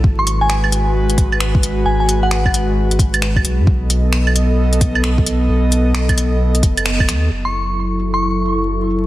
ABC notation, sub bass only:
X:1
M:4/4
L:1/16
Q:"Swing 16ths" 1/4=132
K:F#dor
V:1 name="Sub bass" clef=bass
G,,,16 | G,,,12- G,,,2 B,,, G,, | B,,,16 | B,,,8- B,,,2 F,,,4 D,,2 |
F,,,16 |]